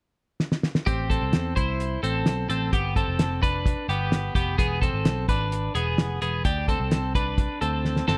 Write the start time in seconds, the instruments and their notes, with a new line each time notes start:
0.40 snare
0.52 snare
0.63 snare
0.75 snare
0.86 picked electric bass A1, clean electric guitar C4 G4, kick, closed hi-hat
1.10 clean electric guitar C4 A4, kick, closed hi-hat
1.22 picked electric bass C2
1.33 picked electric bass E2, snare, closed hi-hat
1.56 picked electric bass C2, clean electric guitar E4 C5, kick, closed hi-hat
1.80 closed hi-hat
2.03 picked electric bass A1, clean electric guitar C4 A4, closed hi-hat
2.26 picked electric bass B1, snare, closed hi-hat
2.50 picked electric bass A1, clean electric guitar C4 A4, closed hi-hat
2.73 picked electric bass G1, clean electric guitar B3 G4, kick, closed hi-hat
2.96 clean electric guitar C4 A4, kick, closed hi-hat
3.08 picked electric bass F1
3.19 snare, closed hi-hat
3.43 clean electric guitar D4 B4, kick, closed hi-hat
3.66 kick, closed hi-hat
3.89 picked electric bass G1, clean electric guitar B3 G4, closed hi-hat
4.12 snare, closed hi-hat
4.35 picked electric bass F1, clean electric guitar B3 G4, kick, closed hi-hat
4.58 picked electric bass E1, clean electric guitar B3 G#4, kick, closed hi-hat
4.81 clean electric guitar C4 A4, kick, closed hi-hat
4.93 picked electric bass G#1
5.05 picked electric bass B1, snare, closed hi-hat
5.28 picked electric bass G#1, clean electric guitar D4 B4, kick, closed hi-hat
5.52 closed hi-hat
5.75 picked electric bass E1, clean electric guitar B3 G#4, closed hi-hat
5.98 picked electric bass F1, snare, closed hi-hat
6.22 picked electric bass E1, clean electric guitar B3 G#4, closed hi-hat
6.45 picked electric bass D2, clean electric guitar D4 G4, kick, closed hi-hat
6.68 clean electric guitar C4 A4, kick, closed hi-hat
6.80 picked electric bass C2
6.91 snare, closed hi-hat
7.15 clean electric guitar D4 B4, kick, closed hi-hat
7.38 kick, closed hi-hat
7.61 picked electric bass D2, clean electric guitar C4 A4, closed hi-hat
7.85 snare
7.96 snare
8.08 picked electric bass G1, clean electric guitar C4 A4, snare